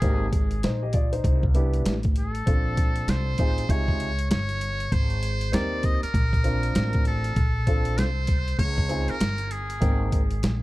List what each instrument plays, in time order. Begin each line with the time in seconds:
Already playing: muted trumpet G#4
0.02 upright bass G#1, upright piano A#3 C4 D#4 G4, kick, closed hi-hat
0.33 kick, closed hi-hat
0.51 closed hi-hat
0.63 upright bass A#1, upright piano D#4 C5, snare, closed hi-hat
0.83 upright piano G4 D#5
0.93 upright piano F4 D5, kick, closed hi-hat
1.12 upright piano D#4 C5, closed hi-hat
1.24 upright bass C2, kick, closed hi-hat
1.43 kick
1.54 upright piano B3 D4 E4 G4, closed hi-hat
1.74 closed hi-hat
1.86 upright bass A1, snare, closed hi-hat
2.03 kick, closed hi-hat
2.16 muted trumpet A4, closed hi-hat
2.35 closed hi-hat
2.46 upright bass A#1, upright piano C4 D4 F4 A4, kick, closed hi-hat
2.77 kick, closed hi-hat
2.96 closed hi-hat
3.08 upright bass C2, muted trumpet C5, snare, closed hi-hat
3.38 upright bass A1, upright piano C4 D#4 F4 G#4, kick, closed hi-hat
3.58 closed hi-hat
3.69 upright bass C#2, upright piano C3 D#4 F4 G#4, muted trumpet C#5, kick, closed hi-hat
3.88 kick
4.00 closed hi-hat
4.19 closed hi-hat
4.30 upright bass G1, muted trumpet C#5, snare, closed hi-hat
4.49 closed hi-hat
4.61 closed hi-hat
4.80 closed hi-hat
4.92 upright bass G#1, muted trumpet C5, kick, closed hi-hat
5.10 closed hi-hat
5.23 closed hi-hat
5.41 closed hi-hat
5.52 upright bass D#2, upright piano C4 D#4 G4 A#4, muted trumpet D5, snare, closed hi-hat
5.83 muted trumpet D#5, kick, closed hi-hat
6.02 muted trumpet A#4, muted upright bass stroke, closed hi-hat
6.14 upright bass A#1, kick, closed hi-hat
6.33 kick, closed hi-hat
6.44 upright piano C4 D4 F4 A#4, closed hi-hat
6.63 closed hi-hat
6.75 upright bass A1, snare, closed hi-hat
6.93 kick, closed hi-hat
7.05 muted trumpet A4, closed hi-hat
7.24 closed hi-hat
7.36 upright bass A#1, kick, closed hi-hat
7.67 upright piano C4 D4 F4 A4, kick, closed hi-hat
7.85 closed hi-hat
7.98 upright bass C2, muted trumpet C5, snare, closed hi-hat
8.27 kick, closed hi-hat
8.48 closed hi-hat
8.59 upright bass C#2, muted trumpet C#5, kick, closed hi-hat
8.78 kick
8.89 upright piano C4 D#4 F4 G#4, closed hi-hat
9.08 muted trumpet A#4, muted upright bass stroke, closed hi-hat
9.21 upright bass G1, snare, closed hi-hat
9.38 closed hi-hat
9.51 muted trumpet G#4, closed hi-hat
9.70 closed hi-hat
9.80 upright bass G#1, upright piano A#3 C4 D#4 G5, kick, closed hi-hat
10.12 kick, closed hi-hat
10.31 closed hi-hat
10.43 upright bass A#1, snare, closed hi-hat